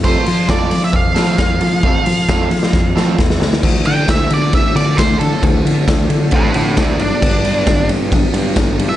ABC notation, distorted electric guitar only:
X:1
M:4/4
L:1/8
Q:1/4=134
K:D
V:1 name="Distorted electric guitar"
[A,=C=FA] z [A,CFA] z2 [A,CFA] z2 | [A,=C=FA] z [A,CFA] z2 [A,CFA] z2 | z8 | z8 |
z8 |]